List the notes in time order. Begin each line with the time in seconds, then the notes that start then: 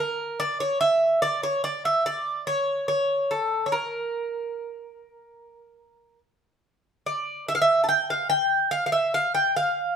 Already playing: A#4
0.40 D5
0.60 C#5
0.81 E5
1.22 D5
1.43 C#5
1.64 D5
1.85 E5
2.06 D5
2.47 C#5
2.88 C#5
3.31 A4
3.66 C#5
3.72 A#4
7.06 D5
7.49 E5
7.55 F5
7.62 E5
7.84 A5
7.89 G5
8.10 F5
8.30 G5
8.71 F5
8.86 F5
8.92 E5
9.14 F5
9.34 G5
9.56 F5